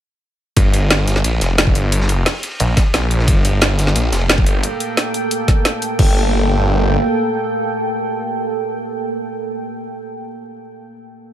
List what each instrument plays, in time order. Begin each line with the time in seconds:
0.57 detuned saw bass G1, kick, closed hi-hat, ride
0.74 closed hi-hat, ride
0.90 snare, closed hi-hat, ride
0.99 ride
1.07 detuned saw bass G1, snare, closed hi-hat, ride
1.16 snare, ride
1.24 detuned saw bass A#1, closed hi-hat, ride
1.41 detuned saw bass F1, snare, closed hi-hat, ride
1.50 ride
1.58 snare, closed hi-hat, ride
1.67 kick, ride
1.75 detuned saw bass G1, closed hi-hat, ride
1.92 closed hi-hat, ride
2.01 snare
2.09 closed hi-hat, ride
2.26 snare, closed hi-hat, open hi-hat
2.43 closed hi-hat, ride
2.51 ride
2.60 detuned saw bass A#1, closed hi-hat, ride
2.68 ride
2.77 kick, snare, closed hi-hat, ride
2.94 detuned saw bass A#1, snare, closed hi-hat, ride
3.11 closed hi-hat, ride
3.19 snare
3.27 detuned saw bass G1, ambient pad A#3 A4 G5, kick, closed hi-hat, ride
3.45 closed hi-hat, ride
3.61 snare, closed hi-hat, ride
3.70 ride
3.78 detuned saw bass G1, snare, closed hi-hat, ride
3.87 snare, ride
3.95 detuned saw bass A#1, closed hi-hat, ride
4.13 detuned saw bass F1, snare, closed hi-hat, ride
4.21 ride
4.29 snare, closed hi-hat, ride
4.38 kick, ride
4.46 detuned saw bass G1, closed hi-hat, ride
4.63 closed hi-hat
4.80 closed hi-hat
4.97 snare, closed hi-hat
5.14 closed hi-hat
5.31 closed hi-hat
5.48 kick, snare, closed hi-hat
5.65 snare, closed hi-hat
5.82 closed hi-hat
5.99 detuned saw bass G1, ambient pad A#3 A4 G5, kick, crash